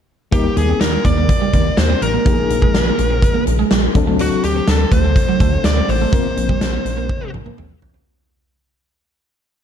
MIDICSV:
0, 0, Header, 1, 7, 480
1, 0, Start_track
1, 0, Key_signature, -3, "major"
1, 0, Tempo, 483871
1, 320, Time_signature, 4, 2, 24, 8
1, 9558, End_track
2, 0, Start_track
2, 0, Title_t, "Lead electric guitar"
2, 0, Program_c, 0, 29
2, 324, Note_on_c, 0, 67, 84
2, 546, Note_off_c, 0, 67, 0
2, 563, Note_on_c, 0, 68, 76
2, 785, Note_off_c, 0, 68, 0
2, 800, Note_on_c, 0, 70, 90
2, 1024, Note_off_c, 0, 70, 0
2, 1040, Note_on_c, 0, 74, 97
2, 1765, Note_on_c, 0, 72, 90
2, 1782, Note_off_c, 0, 74, 0
2, 2007, Note_off_c, 0, 72, 0
2, 2010, Note_on_c, 0, 70, 78
2, 3406, Note_off_c, 0, 70, 0
2, 4175, Note_on_c, 0, 66, 83
2, 4392, Note_off_c, 0, 66, 0
2, 4411, Note_on_c, 0, 67, 74
2, 4653, Note_off_c, 0, 67, 0
2, 4653, Note_on_c, 0, 69, 93
2, 4881, Note_off_c, 0, 69, 0
2, 4885, Note_on_c, 0, 72, 90
2, 5605, Note_on_c, 0, 74, 98
2, 5624, Note_off_c, 0, 72, 0
2, 5843, Note_on_c, 0, 72, 81
2, 5850, Note_off_c, 0, 74, 0
2, 7242, Note_off_c, 0, 72, 0
2, 9558, End_track
3, 0, Start_track
3, 0, Title_t, "FM electric piano"
3, 0, Program_c, 1, 5
3, 311, Note_on_c, 1, 55, 59
3, 317, Note_on_c, 1, 58, 54
3, 326, Note_on_c, 1, 63, 52
3, 334, Note_on_c, 1, 70, 66
3, 505, Control_c, 1, 64, 127
3, 2197, Note_off_c, 1, 55, 0
3, 2201, Note_off_c, 1, 58, 0
3, 2205, Note_off_c, 1, 63, 0
3, 2209, Note_off_c, 1, 70, 0
3, 2230, Note_on_c, 1, 53, 64
3, 2239, Note_on_c, 1, 58, 57
3, 2243, Note_on_c, 1, 63, 53
3, 2252, Control_c, 1, 64, 0
3, 2253, Note_on_c, 1, 67, 56
3, 2304, Note_off_c, 1, 67, 0
3, 2309, Note_on_c, 1, 68, 71
3, 2420, Control_c, 1, 64, 127
3, 3882, Note_off_c, 1, 53, 0
3, 3886, Note_off_c, 1, 58, 0
3, 3888, Note_off_c, 1, 63, 0
3, 3912, Note_on_c, 1, 54, 74
3, 3918, Note_on_c, 1, 60, 70
3, 3922, Note_off_c, 1, 68, 0
3, 3925, Note_on_c, 1, 62, 67
3, 3931, Note_on_c, 1, 69, 83
3, 3933, Control_c, 1, 64, 0
3, 4117, Control_c, 1, 64, 127
3, 5798, Note_off_c, 1, 54, 0
3, 5801, Note_off_c, 1, 60, 0
3, 5805, Note_off_c, 1, 62, 0
3, 5808, Note_off_c, 1, 69, 0
3, 6064, Note_on_c, 1, 53, 65
3, 6073, Note_on_c, 1, 58, 57
3, 6081, Note_on_c, 1, 60, 58
3, 6088, Note_on_c, 1, 70, 68
3, 6095, Control_c, 1, 64, 0
3, 6261, Control_c, 1, 64, 127
3, 7954, Note_off_c, 1, 53, 0
3, 7959, Note_off_c, 1, 58, 0
3, 7963, Note_off_c, 1, 60, 0
3, 7966, Note_off_c, 1, 70, 0
3, 8014, Control_c, 1, 64, 0
3, 9558, End_track
4, 0, Start_track
4, 0, Title_t, "Clean electric guitar"
4, 0, Program_c, 2, 27
4, 323, Note_on_c, 2, 63, 84
4, 407, Note_off_c, 2, 63, 0
4, 683, Note_on_c, 2, 60, 69
4, 767, Note_off_c, 2, 60, 0
4, 1047, Note_on_c, 2, 58, 76
4, 1130, Note_off_c, 2, 58, 0
4, 1165, Note_on_c, 2, 58, 68
4, 1248, Note_off_c, 2, 58, 0
4, 1403, Note_on_c, 2, 55, 69
4, 1487, Note_off_c, 2, 55, 0
4, 1521, Note_on_c, 2, 58, 74
4, 1606, Note_off_c, 2, 58, 0
4, 1882, Note_on_c, 2, 60, 72
4, 1966, Note_off_c, 2, 60, 0
4, 2120, Note_on_c, 2, 58, 68
4, 2205, Note_off_c, 2, 58, 0
4, 2238, Note_on_c, 2, 58, 68
4, 2323, Note_off_c, 2, 58, 0
4, 2597, Note_on_c, 2, 56, 70
4, 2683, Note_off_c, 2, 56, 0
4, 2839, Note_on_c, 2, 58, 65
4, 2924, Note_off_c, 2, 58, 0
4, 3079, Note_on_c, 2, 60, 70
4, 3164, Note_off_c, 2, 60, 0
4, 3317, Note_on_c, 2, 58, 65
4, 3403, Note_off_c, 2, 58, 0
4, 3561, Note_on_c, 2, 56, 76
4, 3646, Note_off_c, 2, 56, 0
4, 3681, Note_on_c, 2, 55, 78
4, 3765, Note_off_c, 2, 55, 0
4, 4041, Note_on_c, 2, 57, 65
4, 4126, Note_off_c, 2, 57, 0
4, 4165, Note_on_c, 2, 62, 86
4, 4248, Note_off_c, 2, 62, 0
4, 4524, Note_on_c, 2, 60, 74
4, 4608, Note_off_c, 2, 60, 0
4, 4884, Note_on_c, 2, 57, 75
4, 4968, Note_off_c, 2, 57, 0
4, 5002, Note_on_c, 2, 57, 64
4, 5086, Note_off_c, 2, 57, 0
4, 5245, Note_on_c, 2, 54, 71
4, 5328, Note_off_c, 2, 54, 0
4, 5363, Note_on_c, 2, 57, 79
4, 5446, Note_off_c, 2, 57, 0
4, 5725, Note_on_c, 2, 60, 70
4, 5808, Note_off_c, 2, 60, 0
4, 5965, Note_on_c, 2, 57, 64
4, 6048, Note_off_c, 2, 57, 0
4, 6083, Note_on_c, 2, 58, 74
4, 6167, Note_off_c, 2, 58, 0
4, 6438, Note_on_c, 2, 55, 72
4, 6524, Note_off_c, 2, 55, 0
4, 6677, Note_on_c, 2, 58, 71
4, 6763, Note_off_c, 2, 58, 0
4, 6917, Note_on_c, 2, 58, 70
4, 7003, Note_off_c, 2, 58, 0
4, 7158, Note_on_c, 2, 60, 63
4, 7244, Note_off_c, 2, 60, 0
4, 7397, Note_on_c, 2, 58, 72
4, 7483, Note_off_c, 2, 58, 0
4, 7523, Note_on_c, 2, 60, 75
4, 7607, Note_off_c, 2, 60, 0
4, 7878, Note_on_c, 2, 60, 64
4, 7964, Note_off_c, 2, 60, 0
4, 9558, End_track
5, 0, Start_track
5, 0, Title_t, "Analog synth bass"
5, 0, Program_c, 3, 38
5, 323, Note_on_c, 3, 39, 97
5, 495, Note_off_c, 3, 39, 0
5, 563, Note_on_c, 3, 39, 98
5, 735, Note_off_c, 3, 39, 0
5, 801, Note_on_c, 3, 39, 93
5, 974, Note_off_c, 3, 39, 0
5, 1040, Note_on_c, 3, 39, 95
5, 1299, Note_off_c, 3, 39, 0
5, 1523, Note_on_c, 3, 39, 95
5, 1695, Note_off_c, 3, 39, 0
5, 1762, Note_on_c, 3, 39, 99
5, 1935, Note_off_c, 3, 39, 0
5, 2000, Note_on_c, 3, 33, 97
5, 2173, Note_off_c, 3, 33, 0
5, 2241, Note_on_c, 3, 34, 99
5, 2414, Note_off_c, 3, 34, 0
5, 2479, Note_on_c, 3, 34, 96
5, 2652, Note_off_c, 3, 34, 0
5, 2720, Note_on_c, 3, 34, 93
5, 2893, Note_off_c, 3, 34, 0
5, 2963, Note_on_c, 3, 34, 99
5, 3222, Note_off_c, 3, 34, 0
5, 3443, Note_on_c, 3, 34, 95
5, 3615, Note_off_c, 3, 34, 0
5, 3680, Note_on_c, 3, 34, 100
5, 3853, Note_off_c, 3, 34, 0
5, 3921, Note_on_c, 3, 38, 97
5, 4267, Note_off_c, 3, 38, 0
5, 4402, Note_on_c, 3, 38, 95
5, 4574, Note_off_c, 3, 38, 0
5, 4642, Note_on_c, 3, 38, 99
5, 4814, Note_off_c, 3, 38, 0
5, 4878, Note_on_c, 3, 38, 86
5, 5138, Note_off_c, 3, 38, 0
5, 5358, Note_on_c, 3, 38, 92
5, 5532, Note_off_c, 3, 38, 0
5, 5596, Note_on_c, 3, 38, 91
5, 5771, Note_off_c, 3, 38, 0
5, 5838, Note_on_c, 3, 33, 91
5, 6012, Note_off_c, 3, 33, 0
5, 6080, Note_on_c, 3, 34, 90
5, 6253, Note_off_c, 3, 34, 0
5, 6317, Note_on_c, 3, 34, 96
5, 6491, Note_off_c, 3, 34, 0
5, 6557, Note_on_c, 3, 34, 95
5, 6731, Note_off_c, 3, 34, 0
5, 6796, Note_on_c, 3, 34, 96
5, 7057, Note_off_c, 3, 34, 0
5, 7275, Note_on_c, 3, 34, 96
5, 7450, Note_off_c, 3, 34, 0
5, 7516, Note_on_c, 3, 34, 96
5, 7690, Note_off_c, 3, 34, 0
5, 7757, Note_on_c, 3, 33, 80
5, 7931, Note_off_c, 3, 33, 0
5, 9558, End_track
6, 0, Start_track
6, 0, Title_t, "Muted clean electric guitar strokes"
6, 565, Note_on_c, 9, 29, 41
6, 665, Note_off_c, 9, 29, 0
6, 806, Note_on_c, 9, 29, 42
6, 905, Note_off_c, 9, 29, 0
6, 1288, Note_on_c, 9, 29, 42
6, 1387, Note_off_c, 9, 29, 0
6, 2001, Note_on_c, 9, 29, 39
6, 2100, Note_off_c, 9, 29, 0
6, 2478, Note_on_c, 9, 29, 42
6, 2577, Note_off_c, 9, 29, 0
6, 2958, Note_on_c, 9, 29, 43
6, 3057, Note_off_c, 9, 29, 0
6, 3441, Note_on_c, 9, 29, 43
6, 3540, Note_off_c, 9, 29, 0
6, 3800, Note_on_c, 9, 29, 42
6, 3899, Note_off_c, 9, 29, 0
6, 4406, Note_on_c, 9, 29, 42
6, 4505, Note_off_c, 9, 29, 0
6, 4643, Note_on_c, 9, 29, 45
6, 4742, Note_off_c, 9, 29, 0
6, 5127, Note_on_c, 9, 29, 44
6, 5227, Note_off_c, 9, 29, 0
6, 5847, Note_on_c, 9, 29, 42
6, 5946, Note_off_c, 9, 29, 0
6, 6324, Note_on_c, 9, 29, 43
6, 6424, Note_off_c, 9, 29, 0
6, 6799, Note_on_c, 9, 29, 42
6, 6898, Note_off_c, 9, 29, 0
6, 7282, Note_on_c, 9, 29, 40
6, 7381, Note_off_c, 9, 29, 0
6, 7640, Note_on_c, 9, 29, 37
6, 7739, Note_off_c, 9, 29, 0
6, 9558, End_track
7, 0, Start_track
7, 0, Title_t, "Drums"
7, 322, Note_on_c, 9, 36, 110
7, 322, Note_on_c, 9, 42, 83
7, 421, Note_off_c, 9, 36, 0
7, 422, Note_off_c, 9, 42, 0
7, 563, Note_on_c, 9, 42, 65
7, 662, Note_off_c, 9, 42, 0
7, 801, Note_on_c, 9, 38, 107
7, 801, Note_on_c, 9, 42, 85
7, 900, Note_off_c, 9, 38, 0
7, 900, Note_off_c, 9, 42, 0
7, 1040, Note_on_c, 9, 36, 78
7, 1041, Note_on_c, 9, 42, 67
7, 1139, Note_off_c, 9, 36, 0
7, 1140, Note_off_c, 9, 42, 0
7, 1280, Note_on_c, 9, 36, 96
7, 1281, Note_on_c, 9, 42, 80
7, 1379, Note_off_c, 9, 36, 0
7, 1381, Note_off_c, 9, 42, 0
7, 1521, Note_on_c, 9, 42, 62
7, 1523, Note_on_c, 9, 36, 79
7, 1620, Note_off_c, 9, 42, 0
7, 1622, Note_off_c, 9, 36, 0
7, 1760, Note_on_c, 9, 38, 108
7, 1763, Note_on_c, 9, 42, 85
7, 1859, Note_off_c, 9, 38, 0
7, 1862, Note_off_c, 9, 42, 0
7, 2005, Note_on_c, 9, 42, 59
7, 2104, Note_off_c, 9, 42, 0
7, 2241, Note_on_c, 9, 36, 113
7, 2242, Note_on_c, 9, 42, 89
7, 2340, Note_off_c, 9, 36, 0
7, 2341, Note_off_c, 9, 42, 0
7, 2483, Note_on_c, 9, 42, 65
7, 2582, Note_off_c, 9, 42, 0
7, 2602, Note_on_c, 9, 36, 85
7, 2701, Note_off_c, 9, 36, 0
7, 2723, Note_on_c, 9, 38, 103
7, 2723, Note_on_c, 9, 42, 79
7, 2822, Note_off_c, 9, 38, 0
7, 2822, Note_off_c, 9, 42, 0
7, 2961, Note_on_c, 9, 42, 70
7, 3060, Note_off_c, 9, 42, 0
7, 3199, Note_on_c, 9, 36, 86
7, 3202, Note_on_c, 9, 42, 78
7, 3298, Note_off_c, 9, 36, 0
7, 3301, Note_off_c, 9, 42, 0
7, 3441, Note_on_c, 9, 42, 65
7, 3540, Note_off_c, 9, 42, 0
7, 3678, Note_on_c, 9, 38, 115
7, 3681, Note_on_c, 9, 42, 84
7, 3777, Note_off_c, 9, 38, 0
7, 3780, Note_off_c, 9, 42, 0
7, 3920, Note_on_c, 9, 36, 97
7, 3922, Note_on_c, 9, 42, 63
7, 4019, Note_off_c, 9, 36, 0
7, 4021, Note_off_c, 9, 42, 0
7, 4158, Note_on_c, 9, 42, 83
7, 4257, Note_off_c, 9, 42, 0
7, 4400, Note_on_c, 9, 42, 66
7, 4499, Note_off_c, 9, 42, 0
7, 4638, Note_on_c, 9, 38, 111
7, 4638, Note_on_c, 9, 42, 85
7, 4737, Note_off_c, 9, 38, 0
7, 4737, Note_off_c, 9, 42, 0
7, 4877, Note_on_c, 9, 36, 89
7, 4879, Note_on_c, 9, 42, 69
7, 4976, Note_off_c, 9, 36, 0
7, 4978, Note_off_c, 9, 42, 0
7, 5117, Note_on_c, 9, 36, 93
7, 5121, Note_on_c, 9, 42, 82
7, 5216, Note_off_c, 9, 36, 0
7, 5220, Note_off_c, 9, 42, 0
7, 5359, Note_on_c, 9, 42, 66
7, 5360, Note_on_c, 9, 36, 85
7, 5458, Note_off_c, 9, 42, 0
7, 5459, Note_off_c, 9, 36, 0
7, 5596, Note_on_c, 9, 38, 112
7, 5599, Note_on_c, 9, 42, 83
7, 5696, Note_off_c, 9, 38, 0
7, 5699, Note_off_c, 9, 42, 0
7, 5841, Note_on_c, 9, 46, 62
7, 5941, Note_off_c, 9, 46, 0
7, 6078, Note_on_c, 9, 36, 114
7, 6080, Note_on_c, 9, 42, 84
7, 6178, Note_off_c, 9, 36, 0
7, 6179, Note_off_c, 9, 42, 0
7, 6322, Note_on_c, 9, 42, 64
7, 6421, Note_off_c, 9, 42, 0
7, 6440, Note_on_c, 9, 36, 81
7, 6539, Note_off_c, 9, 36, 0
7, 6560, Note_on_c, 9, 38, 112
7, 6561, Note_on_c, 9, 42, 84
7, 6660, Note_off_c, 9, 38, 0
7, 6660, Note_off_c, 9, 42, 0
7, 6801, Note_on_c, 9, 42, 66
7, 6901, Note_off_c, 9, 42, 0
7, 7038, Note_on_c, 9, 36, 90
7, 7042, Note_on_c, 9, 48, 53
7, 7137, Note_off_c, 9, 36, 0
7, 7141, Note_off_c, 9, 48, 0
7, 7282, Note_on_c, 9, 47, 63
7, 7381, Note_off_c, 9, 47, 0
7, 7401, Note_on_c, 9, 47, 62
7, 7500, Note_off_c, 9, 47, 0
7, 7521, Note_on_c, 9, 45, 76
7, 7620, Note_off_c, 9, 45, 0
7, 7760, Note_on_c, 9, 43, 84
7, 7859, Note_off_c, 9, 43, 0
7, 7879, Note_on_c, 9, 43, 78
7, 7978, Note_off_c, 9, 43, 0
7, 9558, End_track
0, 0, End_of_file